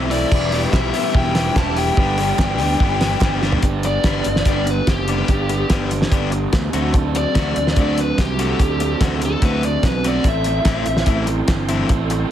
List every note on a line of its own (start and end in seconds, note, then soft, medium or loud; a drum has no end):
0.00 0.23 B1 loud
0.00 0.10 E3 medium
0.00 0.11 A3 medium
0.00 0.11 C4 loud
0.00 0.11 E4 medium
0.00 0.31 A4 medium
0.00 1.95 E5 medium
0.00 0.28 C6 medium
0.11 0.30 A2 medium
0.11 0.30 E3 medium
0.11 0.31 A3 medium
0.11 0.31 C4 medium
0.11 0.31 E4 medium
0.11 0.50 D5 medium
0.11 open hi-hat medium
0.31 0.65 E1 loud
0.31 0.50 E3 medium
0.31 0.51 G3 medium
0.31 0.52 B3 medium
0.31 0.52 E4 loud
0.31 0.53 G4 loud
0.31 3.61 G4 medium
0.31 3.61 B5 medium
0.31 kick loud
0.31 crash loud
0.51 0.71 E3 medium
0.51 0.72 G3 medium
0.51 0.73 B3 loud
0.51 0.73 E4 medium
0.51 0.73 G4 medium
0.51 0.59 D5 medium
0.51 open hi-hat medium
0.72 0.90 B1 loud
0.72 0.93 E3 medium
0.72 0.94 G3 loud
0.72 0.94 B3 loud
0.72 0.94 E4 loud
0.72 0.94 G4 loud
0.72 1.15 E5 loud
0.72 kick loud
0.72 snare loud
0.72 clap medium
0.94 1.13 E3 medium
0.94 1.15 G3 medium
0.94 1.16 B3 medium
0.94 1.15 E4 medium
0.94 1.14 G4 loud
0.94 open hi-hat medium
1.15 1.48 E1 loud
1.15 1.34 E3 medium
1.15 1.36 G3 loud
1.15 1.36 B3 loud
1.15 1.36 E4 loud
1.15 1.36 G4 medium
1.15 1.58 G5 loud
1.15 kick loud
1.35 1.56 E3 loud
1.35 1.57 G3 loud
1.35 1.57 B3 loud
1.35 1.57 E4 loud
1.35 1.56 G4 medium
1.35 snare medium
1.35 open hi-hat medium
1.56 1.90 E1 medium
1.56 1.76 E3 medium
1.56 1.77 G3 medium
1.56 1.78 B3 medium
1.56 1.77 E4 loud
1.56 1.76 G4 loud
1.56 1.78 A5 loud
1.56 kick loud
1.56 snare loud
1.56 clap medium
1.76 1.96 E3 medium
1.76 1.98 G3 medium
1.76 1.98 B3 medium
1.76 1.97 E4 medium
1.76 1.98 G4 loud
1.76 3.38 G5 medium
1.76 open hi-hat medium
1.97 2.31 G1 loud
1.97 2.16 G2 medium
1.97 2.17 D3 loud
1.97 2.18 G3 medium
1.97 2.18 B3 medium
1.97 2.19 D4 loud
1.97 2.18 G4 loud
1.97 3.62 D5 medium
1.97 kick loud
2.17 2.37 G2 medium
2.17 2.38 D3 medium
2.17 2.39 G3 medium
2.17 2.39 B3 medium
2.17 2.40 D4 medium
2.17 2.39 G4 medium
2.17 open hi-hat medium
2.39 2.60 G1 loud
2.39 2.59 G2 medium
2.39 2.60 D3 loud
2.39 2.60 G3 loud
2.39 2.61 B3 medium
2.39 2.62 D4 loud
2.39 2.59 G4 medium
2.39 kick loud
2.39 snare loud
2.39 clap medium
2.59 2.77 D2 loud
2.59 2.79 G2 medium
2.59 2.80 D3 medium
2.59 2.80 G3 medium
2.59 2.81 B3 medium
2.59 2.81 D4 loud
2.59 2.80 G4 medium
2.59 clap medium
2.59 open hi-hat medium
2.80 3.14 G1 loud
2.80 3.00 G2 medium
2.80 3.01 D3 loud
2.80 3.01 G3 medium
2.80 3.02 B3 medium
2.80 3.02 D4 loud
2.80 3.01 G4 medium
2.80 kick loud
3.01 3.20 G2 medium
3.01 3.21 D3 medium
3.01 3.21 G3 medium
3.01 3.22 B3 loud
3.01 3.22 D4 loud
3.01 3.21 G4 loud
3.01 snare medium
3.01 open hi-hat medium
3.21 3.55 G1 medium
3.21 3.41 G2 medium
3.21 3.41 D3 medium
3.21 3.42 G3 medium
3.21 3.42 B3 medium
3.21 3.43 D4 medium
3.21 3.42 G4 medium
3.21 kick loud
3.21 snare loud
3.21 clap medium
3.42 3.62 G2 medium
3.42 3.62 D3 medium
3.42 3.62 G3 medium
3.42 3.62 B3 medium
3.42 3.63 D4 medium
3.42 3.62 G4 loud
3.42 snare medium
3.52 floor tom medium
3.63 3.97 G1 medium
3.63 5.27 B3 medium
3.63 5.29 D4 medium
3.63 5.30 G4 loud
3.63 muted overdriven electric guitar stroke soft
3.63 kick loud
3.63 closed hi-hat medium
3.83 4.45 D5 medium
3.83 muted overdriven electric guitar stroke soft
3.83 closed hi-hat medium
4.04 4.21 G1 medium
4.04 4.26 D3 medium
4.04 4.26 G3 medium
4.04 4.26 B3 medium
4.04 4.26 D4 medium
4.04 kick loud
4.04 snare loud
4.04 closed hi-hat medium
4.24 4.42 G1 medium
4.24 muted overdriven electric guitar stroke soft
4.24 closed hi-hat medium
4.36 snare medium
4.45 4.79 G1 loud
4.45 4.66 D3 medium
4.45 4.66 G3 medium
4.45 4.65 B3 medium
4.45 4.65 D4 loud
4.45 4.67 D5 medium
4.45 kick loud
4.45 closed hi-hat loud
4.66 muted overdriven electric guitar stroke soft
4.66 closed hi-hat medium
4.70 4.89 B4 medium
4.87 5.21 F#1 medium
4.87 5.69 G4 medium
4.87 muted overdriven electric guitar stroke soft
4.87 kick loud
4.87 snare loud
4.87 closed hi-hat loud
5.08 5.28 D3 medium
5.08 5.28 G3 medium
5.08 5.29 B3 medium
5.08 5.29 D4 medium
5.08 closed hi-hat medium
5.28 5.63 G1 medium
5.28 6.72 B3 medium
5.28 6.74 D4 medium
5.28 6.74 G4 loud
5.28 muted overdriven electric guitar stroke soft
5.28 kick loud
5.28 closed hi-hat medium
5.49 muted overdriven electric guitar stroke soft
5.49 closed hi-hat medium
5.70 6.04 G1 medium
5.70 5.91 D3 medium
5.70 5.91 G3 medium
5.70 5.90 B3 medium
5.70 5.90 D4 medium
5.70 kick loud
5.70 snare loud
5.70 closed hi-hat medium
5.91 muted overdriven electric guitar stroke soft
5.91 closed hi-hat medium
6.02 snare medium
6.12 6.45 G1 loud
6.12 6.32 D3 medium
6.12 6.31 G3 medium
6.12 6.31 B3 medium
6.12 6.31 D4 loud
6.12 kick loud
6.12 closed hi-hat loud
6.32 muted overdriven electric guitar stroke soft
6.32 closed hi-hat medium
6.53 6.70 D2 loud
6.53 muted overdriven electric guitar stroke soft
6.53 kick loud
6.53 snare loud
6.53 closed hi-hat medium
6.73 7.24 D2 medium
6.73 6.93 D3 medium
6.73 8.37 F#3 medium
6.73 6.94 A3 medium
6.73 6.93 C4 medium
6.73 8.38 D4 loud
6.73 6.94 F#4 medium
6.73 8.40 A4 loud
6.73 closed hi-hat medium
6.94 muted overdriven electric guitar stroke soft
6.94 kick loud
6.94 closed hi-hat medium
7.15 7.77 D5 loud
7.15 muted overdriven electric guitar stroke soft
7.15 closed hi-hat medium
7.35 7.52 D2 medium
7.35 7.56 D3 medium
7.35 7.56 A3 medium
7.35 7.56 C4 medium
7.35 7.56 F#4 loud
7.35 kick loud
7.35 snare loud
7.35 closed hi-hat loud
7.56 7.73 D2 medium
7.56 muted overdriven electric guitar stroke soft
7.56 closed hi-hat medium
7.67 snare medium
7.76 8.11 D2 loud
7.76 7.98 D3 medium
7.76 7.99 A3 medium
7.76 7.99 C4 loud
7.76 7.98 F#4 loud
7.76 kick loud
7.76 closed hi-hat medium
7.81 7.99 D5 medium
7.98 8.20 B4 medium
7.98 muted overdriven electric guitar stroke medium
7.98 closed hi-hat medium
8.18 8.52 C2 loud
8.18 8.99 G4 medium
8.18 muted overdriven electric guitar stroke soft
8.18 kick loud
8.18 snare loud
8.18 closed hi-hat medium
8.38 8.60 D3 medium
8.38 10.03 F#3 medium
8.38 8.59 A3 medium
8.38 8.60 C4 medium
8.38 10.03 D4 loud
8.38 8.60 F#4 medium
8.38 10.26 A4 loud
8.38 closed hi-hat medium
8.59 8.93 D2 medium
8.59 muted overdriven electric guitar stroke soft
8.59 kick loud
8.59 closed hi-hat medium
8.80 muted overdriven electric guitar stroke soft
8.80 closed hi-hat medium
9.01 9.34 D2 medium
9.01 9.22 D3 medium
9.01 9.21 A3 medium
9.01 9.21 C4 loud
9.01 9.20 F#4 medium
9.01 kick loud
9.01 snare loud
9.01 closed hi-hat loud
9.21 muted overdriven electric guitar stroke soft
9.21 closed hi-hat medium
9.25 9.44 A4 loud
9.42 9.76 D2 loud
9.42 9.63 D3 medium
9.42 9.63 A3 medium
9.42 9.63 C4 medium
9.42 9.63 F#4 loud
9.42 9.64 B4 medium
9.42 kick loud
9.42 closed hi-hat medium
9.63 9.84 D5 medium
9.63 muted overdriven electric guitar stroke soft
9.63 closed hi-hat medium
9.83 10.17 B1 loud
9.83 10.05 B4 medium
9.83 muted overdriven electric guitar stroke soft
9.83 kick loud
9.83 snare loud
9.83 closed hi-hat medium
10.04 10.26 D3 medium
10.04 10.25 A3 medium
10.04 10.25 C4 medium
10.04 10.25 F#4 medium
10.04 10.26 D5 medium
10.04 closed hi-hat medium
10.24 10.58 A1 medium
10.24 11.89 E3 medium
10.24 11.89 C4 loud
10.24 11.90 E4 medium
10.24 12.31 A4 medium
10.24 11.90 A4 loud
10.24 11.07 E5 medium
10.24 12.31 G5 medium
10.24 12.31 C6 medium
10.24 muted overdriven electric guitar stroke soft
10.24 kick loud
10.24 closed hi-hat medium
10.44 muted overdriven electric guitar stroke medium
10.44 closed hi-hat medium
10.65 10.82 A1 medium
10.65 10.86 E3 medium
10.65 10.86 A3 medium
10.65 10.86 C4 medium
10.65 10.85 E4 medium
10.65 kick loud
10.65 snare loud
10.65 clap medium
10.65 closed hi-hat medium
10.86 11.04 A1 medium
10.86 muted overdriven electric guitar stroke soft
10.86 closed hi-hat medium
10.97 snare medium
11.06 11.41 A1 loud
11.06 11.27 E3 medium
11.06 11.26 A3 loud
11.06 11.27 C4 medium
11.06 11.27 E4 loud
11.06 kick loud
11.06 closed hi-hat loud
11.27 muted overdriven electric guitar stroke soft
11.27 closed hi-hat medium
11.48 11.82 G1 loud
11.48 muted overdriven electric guitar stroke medium
11.48 kick loud
11.48 snare loud
11.48 clap medium
11.48 closed hi-hat medium
11.69 11.89 E3 medium
11.69 11.90 A3 medium
11.69 11.90 C4 medium
11.69 11.90 E4 medium
11.69 closed hi-hat medium
11.89 12.23 A1 medium
11.89 12.31 E3 medium
11.89 12.31 C4 medium
11.89 12.31 E4 loud
11.89 12.31 A4 loud
11.89 muted overdriven electric guitar stroke soft
11.89 kick loud
11.89 closed hi-hat medium
12.10 muted overdriven electric guitar stroke medium
12.10 closed hi-hat medium